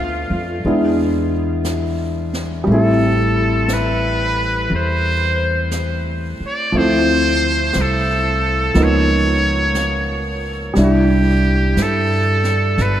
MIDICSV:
0, 0, Header, 1, 6, 480
1, 0, Start_track
1, 0, Tempo, 1011804
1, 1265, Time_signature, 4, 2, 24, 8
1, 6167, End_track
2, 0, Start_track
2, 0, Title_t, "Muted trumpet"
2, 0, Program_c, 0, 59
2, 0, Note_on_c, 0, 65, 76
2, 281, Note_off_c, 0, 65, 0
2, 1292, Note_on_c, 0, 69, 74
2, 1771, Note_on_c, 0, 71, 78
2, 1779, Note_off_c, 0, 69, 0
2, 2241, Note_off_c, 0, 71, 0
2, 2254, Note_on_c, 0, 72, 77
2, 2703, Note_off_c, 0, 72, 0
2, 3068, Note_on_c, 0, 74, 74
2, 3213, Note_on_c, 0, 72, 92
2, 3220, Note_off_c, 0, 74, 0
2, 3706, Note_on_c, 0, 69, 78
2, 3713, Note_off_c, 0, 72, 0
2, 4190, Note_on_c, 0, 73, 75
2, 4197, Note_off_c, 0, 69, 0
2, 4967, Note_off_c, 0, 73, 0
2, 5141, Note_on_c, 0, 67, 74
2, 5609, Note_on_c, 0, 69, 73
2, 5616, Note_off_c, 0, 67, 0
2, 6080, Note_on_c, 0, 71, 77
2, 6087, Note_off_c, 0, 69, 0
2, 6167, Note_off_c, 0, 71, 0
2, 6167, End_track
3, 0, Start_track
3, 0, Title_t, "Grand piano"
3, 0, Program_c, 1, 0
3, 0, Control_c, 1, 64, 127
3, 0, Note_on_c, 1, 57, 49
3, 0, Note_on_c, 1, 59, 44
3, 0, Note_on_c, 1, 62, 44
3, 0, Note_on_c, 1, 65, 51
3, 298, Note_off_c, 1, 57, 0
3, 302, Note_off_c, 1, 59, 0
3, 304, Note_off_c, 1, 62, 0
3, 305, Control_c, 1, 64, 0
3, 309, Note_off_c, 1, 65, 0
3, 312, Note_on_c, 1, 56, 42
3, 313, Note_on_c, 1, 59, 38
3, 318, Note_on_c, 1, 62, 37
3, 318, Note_on_c, 1, 64, 48
3, 387, Control_c, 1, 64, 127
3, 1252, Note_on_c, 1, 55, 50
3, 1270, Note_on_c, 1, 57, 44
3, 1271, Note_off_c, 1, 56, 0
3, 1272, Note_off_c, 1, 59, 0
3, 1272, Control_c, 1, 64, 0
3, 1274, Note_off_c, 1, 62, 0
3, 1274, Note_off_c, 1, 64, 0
3, 1285, Note_on_c, 1, 60, 44
3, 1299, Note_on_c, 1, 64, 55
3, 1355, Control_c, 1, 64, 127
3, 3183, Note_off_c, 1, 55, 0
3, 3189, Note_on_c, 1, 53, 51
3, 3192, Note_off_c, 1, 57, 0
3, 3195, Control_c, 1, 64, 0
3, 3199, Note_off_c, 1, 60, 0
3, 3203, Note_on_c, 1, 57, 50
3, 3207, Note_off_c, 1, 64, 0
3, 3211, Note_on_c, 1, 60, 47
3, 3218, Note_on_c, 1, 64, 57
3, 3288, Control_c, 1, 64, 127
3, 4142, Note_off_c, 1, 53, 0
3, 4149, Note_on_c, 1, 53, 45
3, 4154, Note_off_c, 1, 57, 0
3, 4154, Control_c, 1, 64, 0
3, 4154, Note_on_c, 1, 58, 43
3, 4154, Note_on_c, 1, 59, 44
3, 4158, Note_off_c, 1, 60, 0
3, 4158, Note_on_c, 1, 63, 49
3, 4161, Note_off_c, 1, 64, 0
3, 4242, Control_c, 1, 64, 127
3, 5093, Note_on_c, 1, 55, 49
3, 5105, Note_off_c, 1, 53, 0
3, 5108, Note_off_c, 1, 58, 0
3, 5108, Note_off_c, 1, 59, 0
3, 5110, Note_off_c, 1, 63, 0
3, 5111, Note_on_c, 1, 62, 45
3, 5112, Control_c, 1, 64, 0
3, 5117, Note_on_c, 1, 64, 51
3, 5189, Control_c, 1, 64, 127
3, 6167, Note_off_c, 1, 55, 0
3, 6167, Note_off_c, 1, 62, 0
3, 6167, Note_off_c, 1, 64, 0
3, 6167, End_track
4, 0, Start_track
4, 0, Title_t, "Upright bass"
4, 0, Program_c, 2, 32
4, 0, Note_on_c, 2, 38, 48
4, 130, Note_off_c, 2, 38, 0
4, 143, Note_on_c, 2, 41, 52
4, 290, Note_off_c, 2, 41, 0
4, 307, Note_on_c, 2, 40, 64
4, 1250, Note_off_c, 2, 40, 0
4, 1266, Note_on_c, 2, 33, 64
4, 2210, Note_off_c, 2, 33, 0
4, 2230, Note_on_c, 2, 40, 63
4, 3012, Note_off_c, 2, 40, 0
4, 3193, Note_on_c, 2, 38, 68
4, 3652, Note_off_c, 2, 38, 0
4, 3677, Note_on_c, 2, 36, 59
4, 4133, Note_off_c, 2, 36, 0
4, 4151, Note_on_c, 2, 37, 65
4, 5088, Note_off_c, 2, 37, 0
4, 5107, Note_on_c, 2, 36, 69
4, 5564, Note_off_c, 2, 36, 0
4, 5582, Note_on_c, 2, 43, 62
4, 6041, Note_off_c, 2, 43, 0
4, 6062, Note_on_c, 2, 31, 68
4, 6167, Note_off_c, 2, 31, 0
4, 6167, End_track
5, 0, Start_track
5, 0, Title_t, "Muted upright bass strokes"
5, 3036, Note_on_c, 9, 29, 32
5, 3083, Note_off_c, 9, 29, 0
5, 6167, End_track
6, 0, Start_track
6, 0, Title_t, "Drums"
6, 298, Note_on_c, 9, 25, 27
6, 780, Note_off_c, 9, 25, 0
6, 780, Note_on_c, 9, 25, 31
6, 780, Note_on_c, 9, 38, 35
6, 780, Note_on_c, 9, 44, 44
6, 828, Note_off_c, 9, 38, 0
6, 828, Note_off_c, 9, 44, 0
6, 1108, Note_on_c, 9, 38, 22
6, 1155, Note_off_c, 9, 38, 0
6, 1269, Note_off_c, 9, 25, 0
6, 1269, Note_on_c, 9, 25, 32
6, 1748, Note_off_c, 9, 25, 0
6, 1748, Note_on_c, 9, 25, 31
6, 1748, Note_on_c, 9, 38, 37
6, 1748, Note_on_c, 9, 44, 47
6, 1795, Note_off_c, 9, 38, 0
6, 1795, Note_off_c, 9, 44, 0
6, 2228, Note_off_c, 9, 25, 0
6, 2228, Note_on_c, 9, 25, 28
6, 2710, Note_off_c, 9, 25, 0
6, 2710, Note_on_c, 9, 25, 27
6, 2710, Note_on_c, 9, 38, 33
6, 2710, Note_on_c, 9, 44, 45
6, 2758, Note_off_c, 9, 38, 0
6, 2758, Note_off_c, 9, 44, 0
6, 3189, Note_off_c, 9, 25, 0
6, 3189, Note_on_c, 9, 25, 34
6, 3668, Note_off_c, 9, 25, 0
6, 3668, Note_on_c, 9, 25, 27
6, 3668, Note_on_c, 9, 38, 37
6, 3668, Note_on_c, 9, 44, 45
6, 3716, Note_off_c, 9, 38, 0
6, 3716, Note_off_c, 9, 44, 0
6, 4147, Note_off_c, 9, 25, 0
6, 4147, Note_on_c, 9, 25, 29
6, 4147, Note_on_c, 9, 38, 23
6, 4194, Note_off_c, 9, 38, 0
6, 4624, Note_off_c, 9, 25, 0
6, 4624, Note_on_c, 9, 25, 30
6, 4624, Note_on_c, 9, 38, 34
6, 4624, Note_on_c, 9, 44, 44
6, 4671, Note_off_c, 9, 38, 0
6, 4671, Note_off_c, 9, 44, 0
6, 5101, Note_off_c, 9, 25, 0
6, 5101, Note_on_c, 9, 25, 28
6, 5101, Note_on_c, 9, 38, 24
6, 5148, Note_off_c, 9, 38, 0
6, 5583, Note_off_c, 9, 25, 0
6, 5583, Note_on_c, 9, 25, 31
6, 5583, Note_on_c, 9, 38, 35
6, 5583, Note_on_c, 9, 44, 46
6, 5631, Note_off_c, 9, 38, 0
6, 5631, Note_off_c, 9, 44, 0
6, 5900, Note_on_c, 9, 38, 22
6, 5948, Note_off_c, 9, 38, 0
6, 6061, Note_off_c, 9, 25, 0
6, 6061, Note_on_c, 9, 25, 31
6, 6061, Note_on_c, 9, 38, 23
6, 6108, Note_off_c, 9, 38, 0
6, 6167, Note_off_c, 9, 25, 0
6, 6167, End_track
0, 0, End_of_file